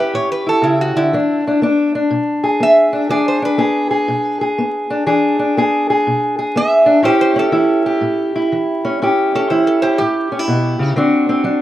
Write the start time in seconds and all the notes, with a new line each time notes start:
Already playing: C#4 E4 G4
0.00 B4
0.14 A2 C#5
0.32 B4
0.46 E4 A4
0.62 C#3 E4
0.81 F#4
0.96 D3 E4
1.13 E3 D4
1.47 D4
1.62 B3 D4
1.95 D4
2.10 B2
2.44 G#4
2.60 B3 E5
2.93 D4
3.09 E3 D4 G#4 D5
3.28 C5
3.42 D4 B4
3.58 B3 G#4
3.91 G#4
4.08 B2
4.41 G#4
4.58 B3
4.90 D4
5.06 E3 D4 G#4
5.39 D4
5.57 B3 G#4
5.90 G#4
6.07 B2
6.39 G#4
6.56 B3 E5
6.86 D4
7.03 A2 C#4 E4 G4 C5
7.21 C5
7.36 C#4 A4
7.52 E3 E4
7.86 G4
8.01 A2
8.36 E4
8.52 E3
8.85 C#4
9.02 A2 C#4 E4 G4
9.35 C#4 A4
9.50 E3 E4 C5
9.67 A4
9.82 G4 C5
9.98 A2 G4
10.32 C#4
10.39 E4
10.48 B2
10.79 C#3
10.96 D3 C4 D4 F#4
11.29 C4
11.44 F#3 D4